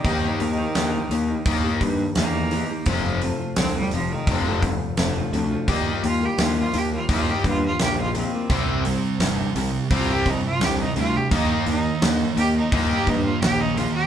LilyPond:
<<
  \new Staff \with { instrumentName = "Cello" } { \time 4/4 \key ees \lydian \tempo 4 = 85 ees2~ ees8 r8 bes4 | r4 c'16 g16 f16 ees16 c8 r4. | r8 f'16 g'16 f'16 f'16 g'16 f'16 f'16 g'16 f'16 f'16 g'16 f'16 c'8~ | c'4. r8 f'16 g'16 ees'16 f'16 g'16 ees'16 f'16 g'16 |
ees'8 ees'8 r8 g'16 ees'16 f'16 g'16 ees'16 f'16 g'16 ees'16 f'16 g'16 | }
  \new Staff \with { instrumentName = "Steel-string acoustic guitar" } { \time 4/4 \key ees \lydian <ees f bes ees' g'>8 <f bes ees' g'>16 <bes ees' g'>16 <ees f bes ees' g'>16 <bes ees' g'>8 <bes ees' g'>8 <bes ees' g'>8. <ees bes ees' g'>16 <bes ees' g'>16 <bes ees' g'>16 <bes ees' g'>16 | <f a c' f'>8 <f a c' f'>16 <a c' f'>16 <f a c' f'>16 <a c' f'>8 <a c' f'>8 <a c' f'>8. <f a c' f'>16 <a c' f'>16 <f a c' f'>16 <a c' f'>16 | <ees g bes f'>8 <ees g bes f'>16 <g bes f'>16 <ees g bes f'>16 <g bes f'>8 <g bes f'>8 <g bes f'>8. <ees g bes f'>16 <g bes f'>16 <ees g bes f'>16 <g bes f'>16 | r1 |
r1 | }
  \new Staff \with { instrumentName = "Distorted electric guitar" } { \clef bass \time 4/4 \key ees \lydian r1 | r1 | r1 | <c g c'>8 <c g>8 <c g>8 <c g>8 <c g c'>8 <c g>8 <c g>8 <c g>8 |
<ees bes ees'>8 <ees bes>8 <ees bes>8 <ees bes>8 <ees bes ees'>8 <ees bes>8 <ees bes>8 <ees bes>8 | }
  \new Staff \with { instrumentName = "Distorted electric guitar" } { \clef bass \time 4/4 \key ees \lydian <ees bes ees'>8 <ees bes>8 <ees bes>8 <ees bes>8 <ees bes ees'>8 <ees bes>8 <ees bes>8 <ees bes>8 | <f, c f>8 <f, c>8 <f, c>8 <f, c>8 <f, c f>8 <f, c>8 <f, c>8 <f, c>8 | <ees bes ees'>8 <ees bes>8 <ees bes>8 <ees bes>8 <ees bes ees'>8 <ees bes>8 <ees bes>8 <ees bes>8 | <c g c'>8 <c g>8 <c g>8 <c g>8 <c g c'>8 <c g>8 <c g>8 <c g>8 |
<ees bes ees'>8 <ees bes>8 <ees bes>8 <ees bes>8 <ees bes ees'>8 <ees bes>8 <ees bes>8 <ees bes>8 | }
  \new Staff \with { instrumentName = "Picked electric bass" } { \clef bass \time 4/4 \key ees \lydian ees,8 ees,8 ees,8 ees,8 ees,8 g,8 e,4 | f,,4 c,8 f,,8 f,,4 f,,8 d,8 | ees,8 ees,8 ees,8 ees,8 ees,8 g,8 bes,,4 | c,4 g,,8 c,8 c,4 c,8 d,8 |
ees,8 ees,8 ees,8 ees,8 ees,8 g,8 bes,,4 | }
  \new DrumStaff \with { instrumentName = "Drums" } \drummode { \time 4/4 <hho bd>8 hho8 <hho sn>8 hho8 <hho bd>8 <hho bd>8 <hho sn>8 hho8 | <hho bd>8 hho8 <hho sn>8 hho8 <hho bd>8 <hho bd>8 <hho sn>8 hho8 | <hho bd>8 hho8 <hho sn>8 hho8 <hho bd>8 <hho bd>8 <hho sn>8 hho8 | <hho bd>8 hho8 <hho sn>8 hho8 <hho bd>8 <hho bd>8 <hho sn>8 hho8 |
<hho bd>8 hho8 <hho sn>8 hho8 <hho bd>8 <hho bd>8 <hho sn>8 hho8 | }
>>